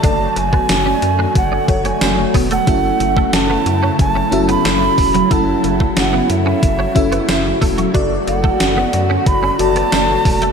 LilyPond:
<<
  \new Staff \with { instrumentName = "Ocarina" } { \time 4/4 \key a \major \tempo 4 = 91 a''8 gis''4. fis''8 fis''16 gis''8 r8 fis''16~ | fis''4 a''4 a''8. b''4~ b''16 | a''4 fis''8 e''2 r8 | r8 fis''4. b''8 a''4. | }
  \new Staff \with { instrumentName = "FM electric piano" } { \time 4/4 \key a \major <fis' a' d''>4.~ <fis' a' d''>16 r8. <fis' a' cis''>4. | <cis' e' fis' a' e''>4.~ <cis' e' fis' a' e''>16 r8. <cis' e' fis' a' e''>4. | <cis' e' fis' a' fis''>4.~ <cis' e' fis' a' fis''>16 r8. <cis' e' fis' a' e''>4. | <fis' a' d''>4.~ <fis' a' d''>16 r8. <fis' a' d''>4. | }
  \new Staff \with { instrumentName = "Clean electric guitar" } { \time 4/4 \key a \major d'16 r8 b16 r16 cis'16 r16 d'16 r16 d'16 r16 cis'16 r8 b16 a16 | a16 r8 a16 r16 b16 r16 cis'16 r16 cis'16 r16 b16 a16 r8 fis16 | a16 r8 a16 r16 b16 r16 cis'16 r16 cis'16 r16 b16 r8 a16 fis16 | d'16 r8 a16 r16 b16 r16 cis'16 r16 cis'16 r16 b16 a16 r8 a16 | }
  \new Staff \with { instrumentName = "Ambient pad" } { \time 4/4 \key a \major << { <d fis'>1 | <cis e'>1~ | <cis e'>1 | <d a fis'>1 | } \\ { <fis a>1~ | <fis a>1~ | <fis a>1~ | <fis a>1 | } >> }
  \new Staff \with { instrumentName = "Analog synth bass" } { \clef bass \time 4/4 \key a \major fis,,8 fis,,8 fis,,8 fis,8 fis,,8 fis,,8 fis,,8 e,,8 | fis,,8 fis,,8 fis,,8 fis,8 fis,,8 fis,,8 fis,,8 e,,8 | fis,,8 fis,,8 fis,,8 fis,8 fis,,8 fis,,8 fis,,8 e,,8 | fis,,8 fis,,8 fis,,8 fis,8 fis,,8 fis,,8 fis,,8 e,,8 | }
  \new DrumStaff \with { instrumentName = "Drums" } \drummode { \time 4/4 <hh bd>8 hh16 bd16 <hh sn tamb>8 hh8 <hh bd>8 <hh bd>16 hh16 <hh sn tamb>8 <hho bd>16 hh16 | <hh bd>8 hh16 bd16 <hh sn tamb>8 hh8 <hh bd>8 hh16 hh16 <hh sn tamb>8 <hho bd>16 hh16 | <hh bd>8 hh16 bd16 <hh sn tamb>8 hh8 <hh bd>8 <hh bd>16 hh16 <hh sn tamb>8 <hho bd>16 hh16 | <hh bd>8 hh16 bd16 <hh sn tamb>8 hh8 <hh bd>8 hh16 hh16 <hh sn tamb>8 <hho bd>16 hh16 | }
>>